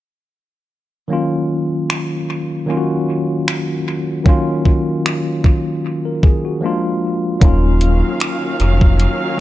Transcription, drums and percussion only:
1.90 finger snap loud
3.48 finger snap loud
4.26 kick loud
4.65 kick medium
5.06 finger snap loud
5.44 kick medium
6.23 kick medium
7.41 kick loud
7.41 closed hi-hat medium
7.81 closed hi-hat medium
8.20 finger snap loud
8.20 closed hi-hat medium
8.60 closed hi-hat medium
8.81 kick medium
9.00 closed hi-hat medium

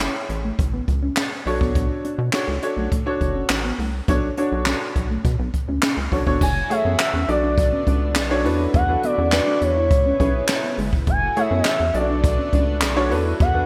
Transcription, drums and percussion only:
0.00 snare loud
0.00 clap medium
0.00 closed hi-hat medium
0.29 closed hi-hat medium
0.59 kick loud
0.59 closed hi-hat medium
0.88 kick medium
0.88 closed hi-hat medium
1.16 snare loud
1.16 clap medium
1.16 closed hi-hat medium
1.46 open hi-hat medium
1.61 kick loud
1.75 kick loud
1.75 closed hi-hat medium
2.04 closed hi-hat medium
2.33 snare loud
2.33 clap medium
2.33 closed hi-hat medium
2.62 closed hi-hat medium
2.92 kick loud
2.92 closed hi-hat medium
3.21 kick medium
3.21 closed hi-hat medium
3.49 snare loud
3.49 clap medium
3.49 closed hi-hat medium
3.79 open hi-hat medium
4.08 kick loud
4.08 closed hi-hat medium
4.37 closed hi-hat medium
4.66 snare loud
4.66 clap medium
4.66 closed hi-hat medium
4.95 kick medium
4.95 closed hi-hat medium
5.25 kick loud
5.25 closed hi-hat medium
5.54 kick medium
5.54 closed hi-hat medium
5.82 snare loud
5.82 clap medium
5.82 closed hi-hat medium
6.12 kick medium
6.12 open hi-hat medium
6.27 kick loud
6.41 kick loud
6.41 crash loud
6.70 closed hi-hat medium
6.99 snare loud
6.99 clap medium
6.99 closed hi-hat medium
7.28 closed hi-hat medium
7.58 kick loud
7.58 closed hi-hat medium
7.87 kick medium
7.87 closed hi-hat medium
8.15 snare loud
8.15 clap medium
8.15 closed hi-hat medium
8.45 open hi-hat medium
8.74 kick loud
8.74 closed hi-hat medium
9.03 closed hi-hat loud
9.32 snare loud
9.32 clap medium
9.32 closed hi-hat medium
9.61 closed hi-hat medium
9.91 kick loud
9.91 closed hi-hat medium
10.20 kick medium
10.20 closed hi-hat medium
10.48 snare loud
10.48 clap medium
10.48 closed hi-hat medium
10.78 open hi-hat medium
10.93 kick loud
11.07 kick loud
11.07 closed hi-hat medium
11.36 closed hi-hat medium
11.65 snare loud
11.65 clap medium
11.65 closed hi-hat medium
11.94 closed hi-hat medium
12.24 kick loud
12.24 closed hi-hat medium
12.53 kick medium
12.53 closed hi-hat medium
12.81 snare loud
12.81 clap medium
12.81 closed hi-hat loud
13.11 open hi-hat medium
13.40 kick loud
13.40 closed hi-hat medium

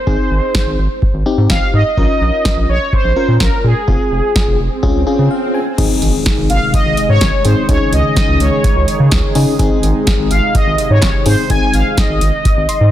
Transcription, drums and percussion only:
0.07 kick loud
0.55 kick loud
0.55 snare loud
1.02 kick loud
1.50 kick loud
1.50 snare loud
1.97 kick loud
2.45 kick loud
2.45 snare loud
2.93 kick loud
3.40 kick loud
3.40 snare loud
3.88 kick loud
4.36 kick loud
4.36 snare loud
4.83 kick loud
5.78 kick loud
5.78 closed hi-hat medium
5.78 crash medium
6.02 closed hi-hat medium
6.26 kick loud
6.26 snare loud
6.26 closed hi-hat medium
6.50 closed hi-hat medium
6.73 kick loud
6.73 closed hi-hat medium
6.97 closed hi-hat medium
7.21 kick loud
7.21 snare loud
7.21 closed hi-hat medium
7.45 closed hi-hat medium
7.69 kick loud
7.69 closed hi-hat medium
7.93 closed hi-hat medium
8.16 kick loud
8.16 snare loud
8.16 closed hi-hat medium
8.40 closed hi-hat medium
8.64 kick loud
8.64 closed hi-hat medium
8.88 closed hi-hat medium
9.11 kick loud
9.11 snare loud
9.11 closed hi-hat medium
9.35 open hi-hat medium
9.59 kick loud
9.59 closed hi-hat medium
9.83 closed hi-hat medium
10.07 kick loud
10.07 snare loud
10.07 closed hi-hat medium
10.31 closed hi-hat medium
10.55 kick loud
10.55 closed hi-hat medium
10.78 closed hi-hat medium
11.02 kick loud
11.02 snare loud
11.02 clap loud
11.02 closed hi-hat medium
11.26 open hi-hat medium
11.50 kick loud
11.50 closed hi-hat medium
11.74 closed hi-hat medium
11.97 kick loud
11.97 snare loud
11.97 closed hi-hat medium
12.21 closed hi-hat medium
12.45 kick loud
12.45 closed hi-hat medium
12.69 closed hi-hat medium

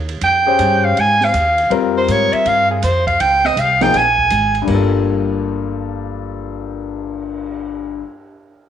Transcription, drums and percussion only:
0.09 ride soft
0.21 ride medium
0.59 hi-hat pedal soft
0.59 ride medium
0.97 ride medium
1.21 snare soft
1.34 hi-hat pedal soft
1.34 ride medium
1.58 ride soft
1.71 ride medium
2.08 hi-hat pedal medium
2.08 ride medium
2.33 ride soft
2.46 ride medium
2.82 hi-hat pedal soft
2.82 ride medium
3.07 kick medium
3.07 ride soft
3.20 ride medium
3.45 snare soft
3.57 hi-hat pedal medium
3.57 ride medium
3.81 snare medium
3.81 ride soft
3.94 snare soft
3.94 ride medium
4.18 kick soft
4.30 hi-hat pedal medium
4.30 ride medium
4.55 ride soft
4.67 kick medium
4.67 crash medium
4.92 cymbal swell soft

